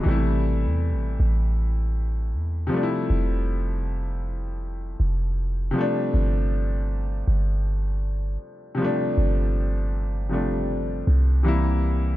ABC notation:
X:1
M:4/4
L:1/16
Q:"Swing 16ths" 1/4=79
K:Gdor
V:1 name="Grand piano" clef=bass
[=B,,C,E,G,A,E]12- [B,,C,E,G,A,E]2 [C,F,G,A,DE]2- | [C,F,G,A,DE]12- [C,F,G,A,DE]2 [C,F,G,A,D]2- | [C,F,G,A,D]12- [C,F,G,A,D]2 [C,F,G,A,D]2- | [C,F,G,A,D]6 [C,F,G,A,D]6 [C,E,G,B,E]4 |]
V:2 name="808-style bass" clef=bass
A,,,3 E,,3/2 A,,,3/2 A,,,6 E,,2 z2 | F,,,8- F,,,2 F,,,4 z2 | G,,,6 G,,,6 z4 | G,,,8- G,,,2 C,,6 |]